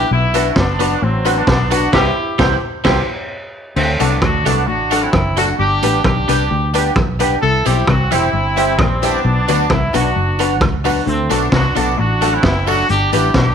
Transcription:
Already playing: G4
0.11 B1 B2 B3 E4
0.34 F#3 B3 D4 F#4 B4, closed hi-hat, tambourine
0.50 E4
0.56 F#1 F#2 B3 D4, kick, snare
0.79 F#3 B3 D4 F#4 B4, closed hi-hat, tambourine
1.01 A1 A2 F#3 C4, muted clean electric guitar stroke
1.25 F#3 B3 D4 F#4 B4, closed hi-hat, tambourine
1.37 B3 D4
1.47 B1 B2, kick, snare
1.70 F#3 B3 D4 F#4 B4, closed hi-hat, tambourine
1.92 C2 G3 C4 E4 G4 C5, kick, snare, crash
2.38 C2 G3 C4 E4 G4 C5, kick, snare
2.84 C2 G3 C4 E4 G4 C5, kick, snare, crash
3.76 D2 D3 A3 C4, crash
3.99 C2 C3 F#3 A3 B3 D4 F#4 A4, closed hi-hat, tambourine
4.22 D2 D3 D4 F#4, kick, cross-stick
4.45 C2 C3 F#3 A3 B3 D4 F#4 A4, closed hi-hat, tambourine
4.67 A1 A2 D4 F#4
4.91 F#3 A3 D4 F#4 A4, closed hi-hat, tambourine
5.02 C4 E4
5.13 F#1 F#2, muted clean electric guitar stroke, kick, cross-stick
5.37 F#3 A3 D4 F#4 A4, closed hi-hat, tambourine
5.58 G1 G2 D4 G4
5.82 A1 A2 G3 B3 D4 G4 B4, closed hi-hat, tambourine
6.04 B1 B2 D4 G4, kick, cross-stick
6.28 C2 C3 G3 B3 D4 G4 B4, closed hi-hat, tambourine
6.51 D2 D3
6.74 G3 B3 D4 G4 B4, closed hi-hat, tambourine
6.96 B1 B2, kick, cross-stick
7.19 G3 B3 D4 G4 B4, closed hi-hat, tambourine
7.42 C2 C3 E4 A4
7.65 B1 B2 G3 C4 E4 G4 C5, closed hi-hat, tambourine
7.87 C2 C3 C4 F#4, kick, cross-stick
8.11 E1 E2 G3 C4 E4 G4 C5, closed hi-hat, tambourine
8.33 G1 G2
8.56 G3 C4 E4 G4 C5, closed hi-hat, tambourine
8.79 A#1 A#2 G3 C4, kick, cross-stick
9.02 G3 B3 C4 D4 E4 G4 C5, closed hi-hat, tambourine
9.24 B1 B2
9.48 D2 D3 F#3 B3 D4 F#4 B4, closed hi-hat, tambourine
9.70 C2 C3 B3 E4, kick, cross-stick
9.93 B1 B2 F#3 B3 D4 F#4 B4, closed hi-hat, tambourine
10.16 F#1 F#2
10.39 F#3 B3 D4 F#4 B4, closed hi-hat, tambourine
10.61 C#2 C#3, muted clean electric guitar stroke, kick, cross-stick
10.84 F#3 B3 D4 F#4 B4, open hi-hat, tambourine
11.06 D2 D3 A3 C4, hi-hat pedal
11.30 B1 B2 F#3 A3 B3 D4 F#4 A4, closed hi-hat, tambourine
11.52 C2 C3 D4 F#4, kick, snare
11.75 B1 B2 F#3 A3 B3 D4 F#4 A4, closed hi-hat, tambourine
11.97 A1 A2 D4 F#4
12.21 F#3 A3 D4 F#4 A4, closed hi-hat, tambourine
12.33 C4 E4
12.43 F#1 F#2, muted clean electric guitar stroke, kick, snare
12.66 F#3 A3 D4 F#4 A4, open hi-hat, tambourine
12.89 G1 G2 D4 G4, hi-hat pedal
13.12 A1 A2 G3 B3 D4 E4 G4 B4, closed hi-hat, tambourine
13.34 B1 B2 D4 G4, kick, snare

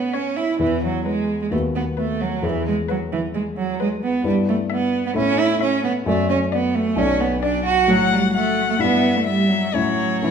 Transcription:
Already playing: A2 B3 E4 A4
0.14 C#4 C#5
0.37 E4
0.59 E2 E3 B3 E4 B4
0.84 F#3
1.05 G#3 B4
1.41 G#3
1.51 D#2 A3 B3 F#4 B4
1.75 B3
1.97 A3 B4
2.21 F#3
2.42 E2 E3 B3 G#4 B4
2.67 G#3
2.89 F#3 B4
3.12 E3
3.34 G#3
3.57 F#3
3.80 G#3 B4
4.03 B3
4.23 G2 G3 B3 E4 B4
4.49 A3
4.70 B3 E5
5.06 B3
5.14 A2 A3 C#4 E4 E5
5.39 E4
5.61 C#4 E5
5.84 B3
6.06 F#2 A3 F#4 D5
6.30 C#4
6.52 B3 D5
6.75 A3
6.96 B1 F#3 C#4 F#4 D5
7.21 B3
7.42 D4 D5
7.65 F#4
7.87 A2 F#3 F#4 C#5 F#5
8.12 G3
8.34 A3 F#5
8.70 A3
8.79 G2 B3 E4 E5
9.16 A3
9.27 G3 E5
9.50 F#3
9.74 A2 F#3 C#4 E4 C#5 E5
10.22 A2 E3 C#4 E4 C#5 E5

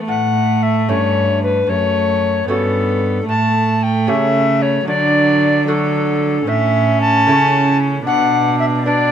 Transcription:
0.07 A2 A3 F#5
0.62 E5
0.89 G2 A3 C#4 E4 C#5
1.42 B4
1.67 F#2 A3 C#5
2.48 G2 A3 B3 C#4 F#4 A4
3.27 A2 A3 A5
3.83 G5
4.07 C#3 A3 C#4 G4 E5
4.62 C#5
4.87 D3 F#3 D5
5.67 F#3 A3 D4 F#4 A4
6.47 A2 C#4 E5
7.01 A5
7.27 C#3 A3 C#4 E4
8.06 B2 D4 F#5
8.59 E5
8.85 B3 D4 D5

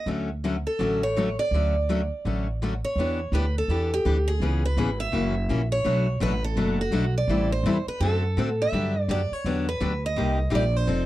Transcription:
0.06 D2 D3 F#3 A3 C#4 F#4
0.44 D3 F#3 A3 C#4 F#4
0.67 A4
0.79 A1 D3 F#3 A3 C#4 F#4
1.03 C#5
1.16 D3 F#3 A3 C#4 F#4
1.39 D5
1.51 D2 D3 F#3 A3
1.55 C#4 F#4
1.89 D3 F#3 A3 C#4 F#4
2.25 A1 D3 F#3 A3 C#4 F#4
2.62 D3 F#3 A3 C#4 F#4
2.85 C#5
2.96 E2 E3 B3
3.00 D4 G4
3.32 D2 E3 B3 D4 G4 B4
3.58 A4
3.68 E2 E3 B3 D4 G4
3.94 G4
4.05 D2 E3 B3 D4 G4
4.28 G#4
4.40 C#2 C#3 E3 B3 C#4 G#4
4.66 B4
4.77 G#1 C#3 E3 B3 C#4 G#4
5.00 E5
5.12 F#1 C#3 E3 A#3 C#4 F#4
5.49 A#1 C#3 E3 A#3 C#4 F#4
5.72 C#5
5.84 B1 B2 F#3 A3 D4 F#4
6.20 A1 B2 F#3 A3 D4 F#4 B4
6.44 A4
6.56 F#1 B2 F#3 A3 D4 F#4
6.81 F#4
6.91 B1 B2 F#3 A3 D4 F#4
7.18 D5
7.28 A1 E3 G3 C4 E4 A4
7.52 C5
7.64 E2 E3 G3 C4 E4 A4
7.87 B4, muted upright bass stroke
8.00 F#2 D3 A3 C4 F#4 A4
8.37 A2 D3 A3 C4 F#4 A4
8.62 E5
8.72 G2 D3 F#3 B3 D4 G4
9.08 F#2 D3 F#3 B3 D4 G4 D5
9.32 C#5, muted upright bass stroke
9.44 E2 D3 F#3 B3 D4 G4
9.69 B4
9.80 D2 D3 F#3 B3 D4 G4
10.06 D#5
10.16 C2 C3 G3 A#3 D#4 G4
10.50 A#1 C3 G3 A#3 D#4 G4
10.55 D5
10.76 C5
10.87 F1 F3 C4 D#4 A4

